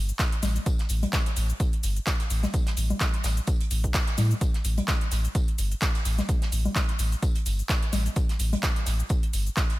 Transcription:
Already playing: G1
0.09 closed hi-hat, cabasa
0.19 kick, snare, clap, closed hi-hat, tambourine, cabasa
0.32 closed hi-hat
0.43 A1, snare, open hi-hat, tambourine, low conga, cabasa
0.56 closed hi-hat, cabasa
0.66 kick, closed hi-hat, tambourine, cabasa
0.79 snare, closed hi-hat
0.89 A1, open hi-hat, tambourine, cabasa
1.03 closed hi-hat, low conga, cabasa
1.13 kick, snare, clap, closed hi-hat, tambourine, cabasa
1.26 closed hi-hat
1.36 A1, open hi-hat, tambourine, cabasa
1.50 closed hi-hat, cabasa
1.60 kick, closed hi-hat, tambourine, cabasa
1.73 closed hi-hat
1.83 G1, open hi-hat, tambourine, cabasa
1.96 closed hi-hat, cabasa
2.06 kick, snare, clap, closed hi-hat, tambourine, cabasa
2.20 closed hi-hat
2.30 A1, open hi-hat, tambourine, cabasa
2.43 snare, closed hi-hat, low conga, cabasa
2.54 kick, closed hi-hat, tambourine, cabasa
2.67 snare, closed hi-hat
2.77 A1, open hi-hat, tambourine, cabasa
2.90 closed hi-hat, low conga, cabasa
3.00 kick, snare, clap, closed hi-hat, tambourine, cabasa
3.14 closed hi-hat
3.24 A1, snare, open hi-hat, tambourine, cabasa
3.37 closed hi-hat, cabasa
3.47 kick, closed hi-hat, tambourine, cabasa
3.61 closed hi-hat
3.71 A1, open hi-hat, tambourine, cabasa
3.84 kick, closed hi-hat, cabasa
3.94 kick, snare, clap, closed hi-hat, tambourine, cabasa
4.07 closed hi-hat
4.18 A2, snare, open hi-hat, tambourine, low conga, cabasa
4.31 closed hi-hat, cabasa
4.41 kick, closed hi-hat, tambourine, cabasa
4.54 snare, closed hi-hat
4.65 A1, open hi-hat, tambourine, cabasa
4.78 closed hi-hat, low conga, cabasa
4.88 kick, snare, clap, closed hi-hat, tambourine, cabasa
5.01 closed hi-hat
5.11 A1, snare, open hi-hat, tambourine, cabasa
5.25 closed hi-hat, cabasa
5.35 kick, closed hi-hat, tambourine, cabasa
5.48 closed hi-hat
5.58 G1, open hi-hat, tambourine, cabasa
5.72 closed hi-hat, cabasa
5.82 kick, snare, clap, closed hi-hat, tambourine, cabasa
5.95 closed hi-hat
6.05 A1, open hi-hat, tambourine, cabasa
6.18 snare, closed hi-hat, low conga, cabasa
6.29 kick, closed hi-hat, tambourine, cabasa
6.42 snare, closed hi-hat
6.52 A1, open hi-hat, tambourine, cabasa
6.65 low conga, cabasa
6.75 kick, snare, clap, closed hi-hat, tambourine, cabasa
6.89 closed hi-hat
6.99 A1, open hi-hat, tambourine, cabasa
7.12 closed hi-hat, cabasa
7.22 kick, closed hi-hat, tambourine, cabasa
7.35 closed hi-hat
7.46 G1, open hi-hat, tambourine, cabasa
7.59 closed hi-hat, cabasa
7.69 kick, snare, clap, closed hi-hat, tambourine, cabasa
7.83 closed hi-hat
7.93 A1, snare, open hi-hat, tambourine, low conga, cabasa
8.06 closed hi-hat, cabasa
8.16 kick, closed hi-hat, tambourine, cabasa
8.29 snare, closed hi-hat
8.39 A1, open hi-hat, tambourine, cabasa
8.53 closed hi-hat, low conga, cabasa
8.63 kick, snare, clap, closed hi-hat, tambourine, cabasa
8.76 closed hi-hat
8.86 A1, snare, open hi-hat, tambourine, cabasa
9.00 closed hi-hat, cabasa
9.09 kick, closed hi-hat, tambourine, cabasa
9.23 closed hi-hat
9.33 G1, open hi-hat, tambourine, cabasa
9.47 closed hi-hat, cabasa
9.57 kick, snare, clap, closed hi-hat, tambourine, cabasa
9.70 closed hi-hat

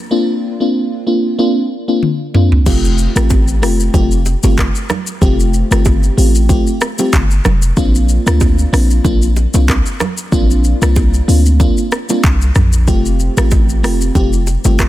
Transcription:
0.11 A#3 C4 D4 F4
0.60 A#3 C4 D4 F4
1.07 A#3 C4 D4 F4
1.38 A#3 C4 D4 F4
1.88 A#3 C4 D4 F4
2.03 high tom
2.34 A#3 C4 D4 F4, mid tom
2.52 floor tom
2.66 F1 A3 C4 F4 G4, kick, crash, low conga, shaker
2.84 shaker
2.98 shaker
3.16 A1 A3 C4 F4 G4, cross-stick, shaker
3.30 kick, high bongo, shaker
3.48 shaker
3.62 F1 A3 C4 F4 G4, cross-stick, open hi-hat, shaker
3.80 shaker
3.94 F1 A3 C4 F4 G4, kick, low bongo, low conga, shaker
4.11 shaker
4.26 high bongo, shaker
4.43 G1 A3 C4 F4 G4, low bongo, shaker
4.58 kick, cross-stick, clap, high bongo, shaker
4.75 shaker
4.89 cross-stick, low bongo, low conga, shaker
5.07 shaker
5.21 F1 A3 C4 F4 G4, kick, low conga, shaker
5.40 shaker
5.54 shaker
5.71 G1 A3 C4 F4 G4, cross-stick, shaker
5.85 kick, high bongo, shaker
6.03 shaker
6.17 A1 A3 C4 F4 G4, open hi-hat, shaker
6.35 shaker
6.49 A3 C4 F4 G4, kick, low bongo, low conga, shaker
6.67 shaker
6.81 cross-stick, high bongo, shaker
6.99 A3 C4 F4 G4, low bongo, shaker
7.13 G1, kick, clap, high bongo, shaker
7.31 shaker
7.45 F1, cross-stick, low bongo, low conga, shaker
7.62 shaker
7.77 A#1 A#3 C4 D4 F4, kick, low conga, shaker
7.95 shaker
8.09 shaker
8.26 D2 A#3 C4 D4 F4, cross-stick, shaker
8.41 kick, high bongo, shaker
8.59 shaker
8.72 A#1 A#3 C4 D4 F4, cross-stick, open hi-hat, shaker
8.91 shaker
9.04 A#1 A#3 C4 D4 F4, kick, low bongo, low conga, shaker
9.22 shaker
9.36 high bongo, shaker
9.54 C2 A#3 C4 D4 F4, low bongo, shaker
9.68 kick, cross-stick, clap, high bongo, shaker
9.86 shaker
10.00 cross-stick, low bongo, low conga, shaker
10.18 shaker
10.32 A#1 A#3 C4 D4 F4, kick, low conga, shaker
10.50 shaker
10.64 shaker
10.82 C2 A#3 C4 D4 F4, cross-stick, shaker
10.96 kick, high bongo, shaker
11.14 shaker
11.28 D2 A#3 C4 D4 F4, open hi-hat, shaker
11.46 shaker
11.60 A#3 C4 D4 F4, kick, low bongo, low conga, shaker
11.77 shaker
11.92 cross-stick, high bongo, shaker
12.09 A#3 C4 D4 F4, low bongo, shaker
12.24 C2, kick, clap, high bongo, shaker
12.41 shaker
12.55 A#1, cross-stick, mid tom, low bongo, low conga, shaker
12.73 shaker
12.87 F1 A3 C4 F4 G4, kick, low conga, shaker
13.06 shaker
13.19 shaker
13.37 A1 A3 C4 F4 G4, cross-stick, shaker
13.51 kick, high bongo, shaker
13.69 shaker
13.83 F1 A3 C4 F4 G4, cross-stick, open hi-hat, shaker
14.01 shaker
14.15 F1 A3 C4 F4 G4, kick, low bongo, low conga, shaker
14.33 shaker
14.47 high bongo, shaker
14.65 G1 A3 C4 F4 G4, low bongo, shaker
14.79 kick, cross-stick, clap, high bongo, shaker

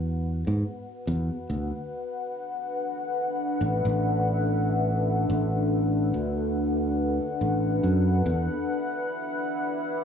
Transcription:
Already playing: E2 E4 B4 D5 F#5 G#5
0.47 G#2
1.07 E2
1.49 D2 D4
1.87 A4
2.26 E5
3.61 A1
3.85 A1
5.30 A1
6.14 D2
7.41 A1
7.83 F#2
8.26 E2 E4
8.64 D5
9.58 G#5

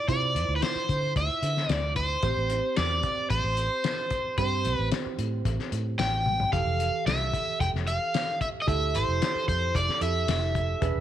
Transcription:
0.08 C3 E4 F4 C5 D5, kick, closed hi-hat
0.35 F2, closed hi-hat
0.49 D2
0.56 B4
0.62 C5, snare, closed hi-hat, tambourine
0.75 muted fingered electric bass stroke
0.89 D3, kick, closed hi-hat
1.16 D2 E5, kick, closed hi-hat
1.42 D3, closed hi-hat
1.57 snare
1.69 D2 D5, snare, closed hi-hat, tambourine
1.96 C5, kick, closed hi-hat
2.23 A1 C4 G4 C5, kick, closed hi-hat
2.37 A1
2.50 closed hi-hat
2.77 E2 D5, snare, closed hi-hat, tambourine
3.03 kick, closed hi-hat
3.30 A1 C5, kick, closed hi-hat
3.44 A1
3.57 closed hi-hat
3.84 snare, closed hi-hat, tambourine
4.10 kick, closed hi-hat
4.38 G2 C4 G4 C5, kick, closed hi-hat
4.65 C2, closed hi-hat
4.74 B4
4.79 A1
4.92 snare, closed hi-hat, tambourine
5.06 muted fingered electric bass stroke
5.18 A2, closed hi-hat
5.45 A1, kick, closed hi-hat
5.59 snare
5.72 A2, closed hi-hat
5.99 A1 G5, snare, closed hi-hat, tambourine
6.26 high tom
6.40 floor tom
6.52 F1 E3 G4 A4 F5, kick, closed hi-hat
6.65 F1
6.80 closed hi-hat
7.06 C2 E5, snare, closed hi-hat, tambourine
7.34 kick, closed hi-hat
7.60 F1 G5, kick, closed hi-hat
7.74 F1, snare
7.87 F5, closed hi-hat
8.14 snare, closed hi-hat, tambourine
8.41 E5, kick, closed hi-hat
8.62 D#5
8.67 D2 E4 G4 A4 E5, kick, closed hi-hat
8.95 A1 C5, closed hi-hat
9.08 F1
9.22 snare, closed hi-hat, tambourine
9.35 muted fingered electric bass stroke
9.48 F2 C5, kick, closed hi-hat
9.75 F1 D5, kick, closed hi-hat
9.89 snare
10.01 F2 E4 G4 A4 E5, closed hi-hat
10.28 F1, snare, closed hi-hat, tambourine
10.55 kick, closed hi-hat
10.81 E1 D4 G#4 B4, kick, closed hi-hat
10.95 E1

